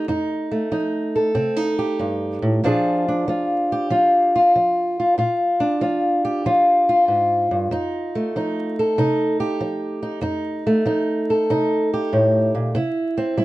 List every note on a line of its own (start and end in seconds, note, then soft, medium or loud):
0.00 0.50 A3 medium
0.08 0.67 F2 medium
0.08 0.70 D#4 medium
0.51 2.63 A3 soft
0.72 1.31 F3 medium
0.72 1.34 D#4 medium
1.16 1.78 A4 medium
1.35 1.95 C3 medium
1.35 1.56 C4 medium
1.56 2.63 D#4 medium
1.79 2.60 G4 medium
1.99 2.42 G2 medium
2.42 2.63 A2 medium
2.64 3.23 A#2 medium
2.64 3.27 F3 medium
2.64 3.08 D4 medium
2.64 3.29 F4 medium
2.64 3.72 G#4 medium
3.08 5.16 D4 medium
3.28 3.87 F3 medium
3.28 3.91 F4 medium
3.72 4.35 G4 medium
3.90 4.50 F3 medium
3.90 4.36 F4 medium
4.36 5.00 F4 medium
4.56 5.14 F3 medium
5.00 5.18 F4 medium
5.18 5.77 A#2 medium
5.18 5.81 F4 medium
5.60 7.68 D4 medium
5.81 6.40 F3 medium
5.81 6.46 F4 medium
6.25 6.88 G4 medium
6.46 7.04 F3 medium
6.46 6.89 F4 medium
6.89 8.79 F4 medium
7.08 7.51 G#2 medium
7.51 7.71 G2 medium
7.71 8.30 F2 medium
7.71 8.36 D#4 medium
8.15 10.65 A3 medium
8.36 8.94 F3 medium
8.36 8.98 D#4 medium
8.79 9.40 A4 medium
8.98 9.56 C3 medium
8.98 10.01 D#4 medium
9.40 10.21 G4 medium
9.61 10.19 F3 medium
10.03 10.20 D#4 medium
10.21 10.81 F2 medium
10.21 10.85 D#4 medium
10.67 12.75 A3 medium
10.86 11.44 F3 medium
10.86 11.49 D#4 medium
11.30 11.92 A4 medium
11.50 12.08 C3 medium
11.50 12.72 D#4 medium
11.94 12.73 G4 medium
12.13 12.54 A2 medium
12.55 12.74 A#2 medium
12.75 13.33 C3 medium
12.75 13.38 E4 medium
13.18 13.45 C4 medium
13.38 13.45 G3 medium
13.38 13.45 E4 medium